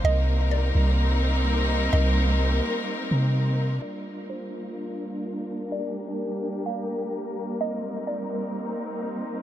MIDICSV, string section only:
0, 0, Header, 1, 2, 480
1, 0, Start_track
1, 0, Key_signature, -2, "minor"
1, 0, Tempo, 472441
1, 41, Time_signature, 4, 2, 24, 8
1, 9572, End_track
2, 0, Start_track
2, 0, Title_t, "String section"
2, 0, Program_c, 0, 48
2, 39, Note_on_c, 0, 60, 82
2, 39, Note_on_c, 0, 70, 93
2, 40, Note_on_c, 0, 55, 86
2, 40, Note_on_c, 0, 58, 78
2, 40, Note_on_c, 0, 63, 80
2, 3841, Note_off_c, 0, 70, 0
2, 3842, Note_off_c, 0, 55, 0
2, 3842, Note_off_c, 0, 58, 0
2, 3842, Note_off_c, 0, 60, 0
2, 3842, Note_off_c, 0, 63, 0
2, 3881, Note_on_c, 0, 55, 77
2, 3881, Note_on_c, 0, 62, 70
2, 3881, Note_on_c, 0, 65, 74
2, 3882, Note_on_c, 0, 58, 72
2, 3882, Note_on_c, 0, 70, 86
2, 5782, Note_off_c, 0, 65, 0
2, 5800, Note_on_c, 0, 67, 73
2, 7682, Note_off_c, 0, 62, 0
2, 7701, Note_off_c, 0, 67, 0
2, 7719, Note_on_c, 0, 63, 73
2, 7720, Note_on_c, 0, 60, 71
2, 9572, Note_off_c, 0, 55, 0
2, 9572, Note_off_c, 0, 58, 0
2, 9572, Note_off_c, 0, 60, 0
2, 9572, Note_off_c, 0, 63, 0
2, 9572, Note_off_c, 0, 70, 0
2, 9572, End_track
0, 0, End_of_file